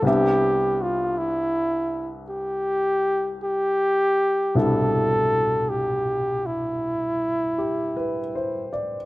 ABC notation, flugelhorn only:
X:1
M:4/4
L:1/16
Q:"Swing" 1/4=53
K:C
V:1 name="Flugelhorn"
G2 F2 E3 z G4 G4 | A4 G2 E8 z2 |]